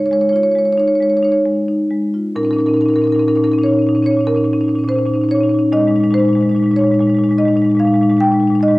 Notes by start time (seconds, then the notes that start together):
Already playing: C#3 D#4
0.06 C#5
0.11 G#3 C#5
0.21 C#5
0.29 F4 C#5
0.36 C#5
0.43 C#5
0.51 G#3 C#5
0.58 C#5
0.65 C#5
0.73 C#5
0.77 D#4 C#5
0.88 C#5
0.95 C#5
1.00 G#3 C#5
1.10 C#5
1.17 C#5
1.22 D#4 C#5
1.32 C#5
1.45 G#3
1.68 D#4
1.90 G#3
2.14 F4
2.36 A#2 C#4 D#4 A#4
2.43 A#2 C#4 D#4 A#4
2.51 C#4 D#4 A#4
2.56 A#2 D#4 A#4
2.61 C#4
2.66 A#2 C#4 D#4 A#4
2.74 A#2 C#4 D#4 A#4
2.81 D#4 A#4
2.85 A#2 C#4 A#4
2.90 C#4 D#4
2.96 A#2 D#4 A#4
3.02 A#2 C#4 A#4
3.07 C#4 D#4
3.12 A#2 D#4 A#4
3.19 C#4 D#4 A#4
3.28 A#2 C#4 D#4 A#4
3.36 A#2 C#4 D#4 A#4
3.43 C#4 D#4 A#4
3.48 A#2
3.52 C#4 D#4 A#4
3.58 A#2 C#4 D#4
3.63 D#4 C#5
3.68 A#2 C#4
3.74 A#2 D#4
3.79 C#4 D#4
3.87 A#2 C#4 D#4
3.95 A#2 C#4 D#4
4.02 A#2 C#4 D#4 C#5
4.11 C#4 D#4
4.16 A#2 C#4
4.21 D#4
4.25 A#2 C#4 D#4 A#4
4.35 A#2 C#4 D#4
4.44 A#2 C#4 D#4
4.53 A#2 C#4 D#4
4.61 A#2 C#4 D#4
4.68 C#4 D#4
4.75 A#2 D#4
4.79 C#4
4.84 A#2 C#4 D#4
4.89 D#4 C5
4.96 A#2 C#4 D#4
5.06 A#2 C#4 D#4
5.14 A#2 C#4 D#4
5.21 A#2 C#4 D#4
5.29 C#4 D#4 C#5
5.35 A#2 D#4
5.41 A#2 C#4 D#4
5.49 C#4 D#4
5.54 A#2
5.59 C#4 D#4
5.72 A#2 G#3 D#4 D#5
5.79 A#2 G#3 D#4
5.87 A#2 G#3 D#4
5.96 G#3 D#4
6.00 A#2 G#3 D#4
6.10 A#2 G#3 D#4 C5
6.18 A#2 G#3 D#4
6.25 A#2 G#3 D#4
6.33 A#2 G#3 D#4
6.41 G#3 D#4
6.45 A#2
6.49 G#3 D#4
6.55 A#2 D#4
6.60 A#2 G#3
6.64 G#3 D#4
6.71 A#2 G#3 D#4
6.76 D#4 C#5
6.81 A#2 G#3
6.87 D#4
6.91 A#2 G#3 D#4
6.99 A#2 G#3 D#4
7.07 A#2 G#3 D#4
7.15 G#3 D#4
7.19 A#2
7.23 G#3 D#4
7.29 A#2 G#3 D#4
7.38 A#2 G#3 D#4 D#5
7.45 A#2 G#3 D#4
7.53 A#2 G#3 D#4
7.62 G#3 D#4
7.66 A#2 G#3
7.72 A#2 D#4
7.77 G#3 D#4 F5
7.84 A#2 G#3 D#4
7.93 A#2 G#3 D#4
8.01 A#2 G#3 D#4
8.09 A#2 G#3 D#4
8.17 G#3 D#4 G5
8.21 A#2 D#4
8.27 G#3
8.31 A#2 G#3 D#4
8.40 A#2 G#3 D#4
8.47 A#2 D#4
8.52 G#3 D#4
8.60 A#2 G#3 D#5
8.64 D#4
8.68 A#2 G#3 D#4
8.75 G#3